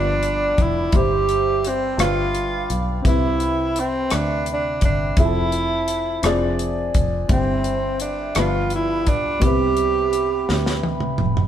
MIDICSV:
0, 0, Header, 1, 6, 480
1, 0, Start_track
1, 0, Key_signature, 0, "major"
1, 0, Tempo, 708383
1, 631, Time_signature, 6, 3, 24, 8
1, 7777, End_track
2, 0, Start_track
2, 0, Title_t, "Glass harmonica"
2, 0, Program_c, 0, 92
2, 0, Note_on_c, 0, 74, 55
2, 0, Note_on_c, 0, 79, 50
2, 0, Note_on_c, 0, 83, 50
2, 0, Note_on_c, 0, 86, 59
2, 612, Note_off_c, 0, 79, 0
2, 612, Note_off_c, 0, 86, 0
2, 613, Note_off_c, 0, 74, 0
2, 619, Note_on_c, 0, 84, 49
2, 620, Note_on_c, 0, 79, 46
2, 622, Note_on_c, 0, 76, 58
2, 624, Note_on_c, 0, 88, 55
2, 628, Note_off_c, 0, 83, 0
2, 1336, Note_off_c, 0, 84, 0
2, 1337, Note_off_c, 0, 79, 0
2, 1338, Note_off_c, 0, 76, 0
2, 1339, Note_off_c, 0, 88, 0
2, 1346, Note_on_c, 0, 79, 50
2, 1346, Note_on_c, 0, 83, 49
2, 1346, Note_on_c, 0, 86, 58
2, 1350, Note_on_c, 0, 77, 54
2, 2060, Note_off_c, 0, 86, 0
2, 2062, Note_off_c, 0, 77, 0
2, 2067, Note_on_c, 0, 76, 55
2, 3485, Note_off_c, 0, 79, 0
2, 3485, Note_off_c, 0, 83, 0
2, 3502, Note_on_c, 0, 72, 53
2, 3504, Note_on_c, 0, 81, 51
2, 4205, Note_off_c, 0, 76, 0
2, 4219, Note_off_c, 0, 81, 0
2, 4224, Note_on_c, 0, 80, 52
2, 4226, Note_on_c, 0, 74, 56
2, 4930, Note_off_c, 0, 72, 0
2, 4939, Note_off_c, 0, 80, 0
2, 4940, Note_off_c, 0, 74, 0
2, 4956, Note_on_c, 0, 79, 47
2, 4962, Note_on_c, 0, 76, 52
2, 4963, Note_on_c, 0, 72, 51
2, 5668, Note_off_c, 0, 72, 0
2, 5668, Note_off_c, 0, 76, 0
2, 5670, Note_on_c, 0, 83, 67
2, 5672, Note_on_c, 0, 74, 55
2, 6379, Note_off_c, 0, 83, 0
2, 6381, Note_on_c, 0, 76, 47
2, 6383, Note_off_c, 0, 74, 0
2, 6386, Note_on_c, 0, 71, 52
2, 6387, Note_on_c, 0, 83, 62
2, 7777, Note_off_c, 0, 71, 0
2, 7777, Note_off_c, 0, 76, 0
2, 7777, Note_off_c, 0, 79, 0
2, 7777, Note_off_c, 0, 83, 0
2, 7777, End_track
3, 0, Start_track
3, 0, Title_t, "Tenor saxophone"
3, 0, Program_c, 1, 66
3, 0, Note_on_c, 1, 62, 81
3, 420, Note_on_c, 1, 64, 78
3, 430, Note_off_c, 1, 62, 0
3, 650, Note_on_c, 1, 67, 88
3, 660, Note_off_c, 1, 64, 0
3, 1140, Note_on_c, 1, 60, 74
3, 1150, Note_off_c, 1, 67, 0
3, 1364, Note_off_c, 1, 60, 0
3, 1368, Note_on_c, 1, 65, 81
3, 1871, Note_off_c, 1, 65, 0
3, 2091, Note_on_c, 1, 64, 71
3, 2573, Note_on_c, 1, 60, 70
3, 2583, Note_off_c, 1, 64, 0
3, 2804, Note_on_c, 1, 62, 73
3, 2814, Note_off_c, 1, 60, 0
3, 3036, Note_off_c, 1, 62, 0
3, 3070, Note_on_c, 1, 62, 65
3, 3274, Note_off_c, 1, 62, 0
3, 3286, Note_on_c, 1, 62, 67
3, 3501, Note_off_c, 1, 62, 0
3, 3518, Note_on_c, 1, 64, 70
3, 4446, Note_off_c, 1, 64, 0
3, 4963, Note_on_c, 1, 60, 71
3, 5409, Note_off_c, 1, 60, 0
3, 5430, Note_on_c, 1, 62, 70
3, 5688, Note_on_c, 1, 65, 78
3, 5699, Note_off_c, 1, 62, 0
3, 5918, Note_off_c, 1, 65, 0
3, 5929, Note_on_c, 1, 64, 76
3, 6157, Note_on_c, 1, 62, 76
3, 6167, Note_off_c, 1, 64, 0
3, 6385, Note_on_c, 1, 67, 83
3, 6395, Note_off_c, 1, 62, 0
3, 7347, Note_off_c, 1, 67, 0
3, 7777, End_track
4, 0, Start_track
4, 0, Title_t, "Upright piano"
4, 0, Program_c, 2, 0
4, 0, Note_on_c, 2, 43, 53
4, 0, Note_on_c, 2, 53, 48
4, 0, Note_on_c, 2, 59, 51
4, 0, Note_on_c, 2, 62, 50
4, 0, Note_on_c, 2, 67, 47
4, 0, Note_on_c, 2, 74, 58
4, 39, Control_c, 2, 64, 127
4, 608, Note_off_c, 2, 43, 0
4, 624, Note_on_c, 2, 64, 49
4, 626, Note_off_c, 2, 67, 0
4, 628, Note_off_c, 2, 59, 0
4, 630, Note_off_c, 2, 62, 0
4, 632, Note_on_c, 2, 43, 52
4, 634, Note_off_c, 2, 53, 0
4, 636, Note_on_c, 2, 67, 42
4, 639, Note_off_c, 2, 74, 0
4, 640, Control_c, 2, 64, 0
4, 649, Note_on_c, 2, 72, 58
4, 765, Control_c, 2, 64, 127
4, 1323, Note_off_c, 2, 43, 0
4, 1336, Note_on_c, 2, 62, 47
4, 1339, Note_off_c, 2, 67, 0
4, 1342, Note_on_c, 2, 65, 44
4, 1346, Note_off_c, 2, 64, 0
4, 1348, Note_on_c, 2, 43, 53
4, 1349, Note_on_c, 2, 67, 46
4, 1355, Note_on_c, 2, 71, 47
4, 1357, Note_on_c, 2, 77, 59
4, 1359, Note_off_c, 2, 72, 0
4, 1360, Control_c, 2, 64, 0
4, 1476, Control_c, 2, 64, 127
4, 2041, Note_off_c, 2, 43, 0
4, 2046, Note_on_c, 2, 60, 50
4, 2054, Note_off_c, 2, 67, 0
4, 2059, Note_on_c, 2, 64, 43
4, 2062, Note_off_c, 2, 62, 0
4, 2064, Note_off_c, 2, 71, 0
4, 2064, Note_on_c, 2, 67, 44
4, 2065, Note_off_c, 2, 65, 0
4, 2065, Note_on_c, 2, 48, 47
4, 2073, Note_off_c, 2, 77, 0
4, 2074, Note_on_c, 2, 71, 47
4, 2076, Control_c, 2, 64, 0
4, 2086, Note_on_c, 2, 76, 52
4, 2188, Control_c, 2, 64, 127
4, 2760, Note_off_c, 2, 48, 0
4, 3470, Note_off_c, 2, 60, 0
4, 3476, Note_off_c, 2, 64, 0
4, 3479, Note_off_c, 2, 67, 0
4, 3483, Note_off_c, 2, 71, 0
4, 3490, Note_off_c, 2, 76, 0
4, 3501, Note_on_c, 2, 60, 48
4, 3509, Note_on_c, 2, 64, 42
4, 3516, Note_on_c, 2, 53, 46
4, 3516, Note_on_c, 2, 68, 37
4, 3517, Control_c, 2, 64, 0
4, 3521, Note_on_c, 2, 76, 52
4, 3557, Note_off_c, 2, 68, 0
4, 3561, Note_on_c, 2, 69, 47
4, 3624, Control_c, 2, 64, 127
4, 4208, Note_off_c, 2, 60, 0
4, 4218, Note_on_c, 2, 60, 63
4, 4220, Note_off_c, 2, 53, 0
4, 4227, Note_on_c, 2, 62, 54
4, 4228, Note_off_c, 2, 64, 0
4, 4230, Note_on_c, 2, 53, 56
4, 4234, Note_off_c, 2, 76, 0
4, 4237, Control_c, 2, 64, 0
4, 4239, Note_on_c, 2, 68, 53
4, 4244, Note_on_c, 2, 74, 69
4, 4255, Note_off_c, 2, 69, 0
4, 4372, Control_c, 2, 64, 127
4, 4925, Note_off_c, 2, 60, 0
4, 4935, Note_on_c, 2, 60, 47
4, 4946, Note_on_c, 2, 43, 49
4, 4946, Note_on_c, 2, 64, 49
4, 4948, Note_off_c, 2, 62, 0
4, 4949, Note_off_c, 2, 53, 0
4, 4953, Note_off_c, 2, 68, 0
4, 4954, Note_on_c, 2, 67, 55
4, 4956, Note_off_c, 2, 74, 0
4, 4957, Control_c, 2, 64, 0
4, 5094, Control_c, 2, 64, 127
4, 5640, Note_off_c, 2, 43, 0
4, 5661, Note_on_c, 2, 55, 50
4, 5662, Note_off_c, 2, 60, 0
4, 5663, Note_on_c, 2, 59, 46
4, 5667, Note_off_c, 2, 64, 0
4, 5670, Note_on_c, 2, 62, 49
4, 5671, Note_off_c, 2, 67, 0
4, 5671, Note_on_c, 2, 43, 53
4, 5676, Note_on_c, 2, 53, 51
4, 5677, Control_c, 2, 64, 0
4, 5681, Note_on_c, 2, 71, 59
4, 5785, Control_c, 2, 64, 127
4, 6357, Note_off_c, 2, 55, 0
4, 6363, Note_off_c, 2, 43, 0
4, 6364, Note_off_c, 2, 59, 0
4, 6367, Note_on_c, 2, 55, 50
4, 6374, Note_on_c, 2, 59, 44
4, 6386, Note_on_c, 2, 60, 49
4, 6387, Note_on_c, 2, 48, 48
4, 6389, Note_off_c, 2, 62, 0
4, 6393, Note_off_c, 2, 53, 0
4, 6395, Note_off_c, 2, 71, 0
4, 6397, Control_c, 2, 64, 0
4, 6398, Note_on_c, 2, 64, 45
4, 6408, Note_on_c, 2, 71, 58
4, 6516, Control_c, 2, 64, 127
4, 7081, Note_off_c, 2, 48, 0
4, 7777, Note_off_c, 2, 55, 0
4, 7777, Note_off_c, 2, 59, 0
4, 7777, Note_off_c, 2, 60, 0
4, 7777, Note_off_c, 2, 64, 0
4, 7777, Note_off_c, 2, 71, 0
4, 7777, End_track
5, 0, Start_track
5, 0, Title_t, "Fingered electric bass"
5, 0, Program_c, 3, 33
5, 0, Note_on_c, 3, 31, 89
5, 362, Note_off_c, 3, 31, 0
5, 393, Note_on_c, 3, 29, 66
5, 612, Note_off_c, 3, 29, 0
5, 630, Note_on_c, 3, 31, 91
5, 1322, Note_off_c, 3, 31, 0
5, 1342, Note_on_c, 3, 31, 72
5, 1798, Note_off_c, 3, 31, 0
5, 1830, Note_on_c, 3, 35, 63
5, 2050, Note_off_c, 3, 35, 0
5, 2066, Note_on_c, 3, 36, 77
5, 2760, Note_off_c, 3, 36, 0
5, 2792, Note_on_c, 3, 38, 71
5, 3265, Note_on_c, 3, 31, 74
5, 3275, Note_off_c, 3, 38, 0
5, 3487, Note_off_c, 3, 31, 0
5, 3504, Note_on_c, 3, 29, 86
5, 4199, Note_off_c, 3, 29, 0
5, 4223, Note_on_c, 3, 29, 77
5, 4678, Note_off_c, 3, 29, 0
5, 4707, Note_on_c, 3, 29, 77
5, 4929, Note_off_c, 3, 29, 0
5, 4942, Note_on_c, 3, 31, 88
5, 5638, Note_off_c, 3, 31, 0
5, 5666, Note_on_c, 3, 31, 77
5, 6147, Note_off_c, 3, 31, 0
5, 6147, Note_on_c, 3, 35, 72
5, 6368, Note_off_c, 3, 35, 0
5, 6383, Note_on_c, 3, 36, 78
5, 7079, Note_off_c, 3, 36, 0
5, 7109, Note_on_c, 3, 38, 76
5, 7562, Note_off_c, 3, 38, 0
5, 7591, Note_on_c, 3, 29, 70
5, 7777, Note_off_c, 3, 29, 0
5, 7777, End_track
6, 0, Start_track
6, 0, Title_t, "Drums"
6, 153, Note_on_c, 9, 42, 44
6, 221, Note_off_c, 9, 42, 0
6, 393, Note_on_c, 9, 42, 49
6, 394, Note_on_c, 9, 36, 69
6, 461, Note_off_c, 9, 42, 0
6, 462, Note_off_c, 9, 36, 0
6, 626, Note_on_c, 9, 42, 60
6, 629, Note_on_c, 9, 36, 86
6, 694, Note_off_c, 9, 42, 0
6, 697, Note_off_c, 9, 36, 0
6, 872, Note_on_c, 9, 42, 40
6, 939, Note_off_c, 9, 42, 0
6, 1114, Note_on_c, 9, 42, 52
6, 1182, Note_off_c, 9, 42, 0
6, 1349, Note_on_c, 9, 42, 77
6, 1356, Note_on_c, 9, 37, 91
6, 1417, Note_off_c, 9, 42, 0
6, 1423, Note_off_c, 9, 37, 0
6, 1589, Note_on_c, 9, 42, 44
6, 1657, Note_off_c, 9, 42, 0
6, 1829, Note_on_c, 9, 42, 49
6, 1897, Note_off_c, 9, 42, 0
6, 2066, Note_on_c, 9, 36, 87
6, 2069, Note_on_c, 9, 42, 67
6, 2134, Note_off_c, 9, 36, 0
6, 2137, Note_off_c, 9, 42, 0
6, 2304, Note_on_c, 9, 42, 41
6, 2372, Note_off_c, 9, 42, 0
6, 2547, Note_on_c, 9, 42, 55
6, 2615, Note_off_c, 9, 42, 0
6, 2781, Note_on_c, 9, 42, 74
6, 2788, Note_on_c, 9, 37, 86
6, 2849, Note_off_c, 9, 42, 0
6, 2855, Note_off_c, 9, 37, 0
6, 3023, Note_on_c, 9, 42, 42
6, 3091, Note_off_c, 9, 42, 0
6, 3262, Note_on_c, 9, 42, 52
6, 3267, Note_on_c, 9, 36, 65
6, 3329, Note_off_c, 9, 42, 0
6, 3335, Note_off_c, 9, 36, 0
6, 3501, Note_on_c, 9, 42, 64
6, 3503, Note_on_c, 9, 36, 86
6, 3569, Note_off_c, 9, 42, 0
6, 3571, Note_off_c, 9, 36, 0
6, 3742, Note_on_c, 9, 42, 43
6, 3810, Note_off_c, 9, 42, 0
6, 3983, Note_on_c, 9, 42, 55
6, 4050, Note_off_c, 9, 42, 0
6, 4222, Note_on_c, 9, 42, 79
6, 4228, Note_on_c, 9, 37, 87
6, 4290, Note_off_c, 9, 42, 0
6, 4296, Note_off_c, 9, 37, 0
6, 4467, Note_on_c, 9, 42, 43
6, 4535, Note_off_c, 9, 42, 0
6, 4706, Note_on_c, 9, 42, 55
6, 4708, Note_on_c, 9, 36, 68
6, 4773, Note_off_c, 9, 42, 0
6, 4776, Note_off_c, 9, 36, 0
6, 4941, Note_on_c, 9, 42, 66
6, 4943, Note_on_c, 9, 36, 89
6, 5009, Note_off_c, 9, 42, 0
6, 5010, Note_off_c, 9, 36, 0
6, 5178, Note_on_c, 9, 42, 43
6, 5246, Note_off_c, 9, 42, 0
6, 5418, Note_on_c, 9, 42, 57
6, 5486, Note_off_c, 9, 42, 0
6, 5658, Note_on_c, 9, 42, 81
6, 5664, Note_on_c, 9, 37, 93
6, 5726, Note_off_c, 9, 42, 0
6, 5732, Note_off_c, 9, 37, 0
6, 5897, Note_on_c, 9, 42, 41
6, 5965, Note_off_c, 9, 42, 0
6, 6143, Note_on_c, 9, 42, 53
6, 6145, Note_on_c, 9, 36, 69
6, 6210, Note_off_c, 9, 42, 0
6, 6213, Note_off_c, 9, 36, 0
6, 6380, Note_on_c, 9, 42, 70
6, 6381, Note_on_c, 9, 36, 85
6, 6448, Note_off_c, 9, 42, 0
6, 6449, Note_off_c, 9, 36, 0
6, 6618, Note_on_c, 9, 42, 42
6, 6685, Note_off_c, 9, 42, 0
6, 6863, Note_on_c, 9, 42, 51
6, 6931, Note_off_c, 9, 42, 0
6, 7107, Note_on_c, 9, 38, 45
6, 7175, Note_off_c, 9, 38, 0
6, 7226, Note_on_c, 9, 38, 44
6, 7293, Note_off_c, 9, 38, 0
6, 7341, Note_on_c, 9, 48, 57
6, 7409, Note_off_c, 9, 48, 0
6, 7457, Note_on_c, 9, 47, 56
6, 7524, Note_off_c, 9, 47, 0
6, 7576, Note_on_c, 9, 45, 72
6, 7644, Note_off_c, 9, 45, 0
6, 7703, Note_on_c, 9, 43, 61
6, 7771, Note_off_c, 9, 43, 0
6, 7777, End_track
0, 0, End_of_file